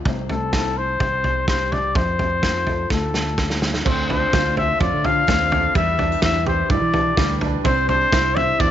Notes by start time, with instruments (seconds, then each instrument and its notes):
0.05 fingered electric bass C2, steel-string acoustic guitar C3 A3 C4 E4, kick, floor tom
0.09 steel-string acoustic guitar C5
0.29 steel-string acoustic guitar A3, trumpet A4, floor tom
0.53 steel-string acoustic guitar E4, kick, snare
0.77 steel-string acoustic guitar E4, trumpet C5
1.00 fingered electric bass C2, steel-string acoustic guitar C3, kick, floor tom
1.24 steel-string acoustic guitar G3, floor tom
1.48 steel-string acoustic guitar G4, trumpet C5, kick, snare
1.72 steel-string acoustic guitar C5, trumpet D5, floor tom
1.95 fingered electric bass F2, steel-string acoustic guitar F3, trumpet C5, kick, floor tom
2.19 steel-string acoustic guitar A3, floor tom
2.43 steel-string acoustic guitar F4, kick, snare
2.67 steel-string acoustic guitar A4, floor tom
2.90 fingered electric bass D2, steel-string acoustic guitar D3 A3 D4 F4, trumpet A4, kick, snare
3.14 steel-string acoustic guitar A3, snare
3.38 steel-string acoustic guitar F4, kick, snare
3.50 snare
3.62 steel-string acoustic guitar A4, snare
3.74 snare
3.85 fingered electric bass D2, twelve-string acoustic guitar D3 A3 D4 F4 C5, steel-string acoustic guitar D3, upright piano C4, trumpet C5, kick, floor tom, crash
4.08 upright piano D4, twelve-string acoustic guitar D4 F4 C5, steel-string acoustic guitar F4, trumpet C5, floor tom
4.33 fingered electric bass D2, twelve-string acoustic guitar D3 A3 D4 F4 C5, steel-string acoustic guitar A3, upright piano F4, kick, snare, floor tom
4.57 upright piano C5, steel-string acoustic guitar C5, trumpet E5, floor tom
4.79 fingered electric bass F2, steel-string acoustic guitar A2, twelve-string acoustic guitar A3 D4 F4 C5, upright piano F4, trumpet D5, kick, floor tom
4.93 fingered electric bass D3
5.04 upright piano D4, twelve-string acoustic guitar D4 F4 C5, steel-string acoustic guitar F4, trumpet F5, floor tom
5.27 fingered electric bass D#2, twelve-string acoustic guitar D3 A3 D4 F4 C5, steel-string acoustic guitar A3, upright piano C4, kick, snare, floor tom
5.50 upright piano D4, twelve-string acoustic guitar F4 C5, steel-string acoustic guitar C5, floor tom
5.75 fingered electric bass E2, twelve-string acoustic guitar E3 G3 D4 E4 B4, steel-string acoustic guitar E3, upright piano G3, trumpet E5, kick, floor tom
5.98 upright piano D4, twelve-string acoustic guitar D4 E4 B4, steel-string acoustic guitar E4, floor tom
6.12 steel-string acoustic guitar G4
6.22 fingered electric bass E2, twelve-string acoustic guitar E3 G3 D4 E4 B4, steel-string acoustic guitar G3, upright piano E4, trumpet E5, kick, snare, floor tom
6.46 upright piano G4, steel-string acoustic guitar B4, trumpet C5, floor tom
6.70 fingered electric bass G2, steel-string acoustic guitar B2, twelve-string acoustic guitar G3 D4 E4 B4, upright piano E4, trumpet D5, kick, floor tom
6.82 fingered electric bass E3
6.94 upright piano D4, twelve-string acoustic guitar D4 E4 B4, steel-string acoustic guitar G4, floor tom
7.17 fingered electric bass D2, twelve-string acoustic guitar E3 G3 D4 E4 B4, upright piano G3, steel-string acoustic guitar G3, kick, snare, floor tom
7.41 upright piano D4, twelve-string acoustic guitar D4 E4 B4, steel-string acoustic guitar B4, floor tom
7.63 felt piano C2 C3 G3 E4 C5, fingered electric bass C2, twelve-string acoustic guitar C3 E3 G3 D4 E4 C5, upright piano C4, trumpet C5, kick, floor tom
7.67 felt piano D5
7.89 twelve-string acoustic guitar G3 D4 E4 C5, upright piano D4, trumpet C5, floor tom, tambourine
8.01 tambourine
8.12 fingered electric bass C2, twelve-string acoustic guitar C3 E3 G3 D4 E4 C5, upright piano E4, kick, snare, floor tom, tambourine
8.36 upright piano C5, trumpet E5, floor tom
8.59 fingered electric bass E2, twelve-string acoustic guitar G3 D4 E4 C5, upright piano E4, trumpet D5, kick, floor tom, tambourine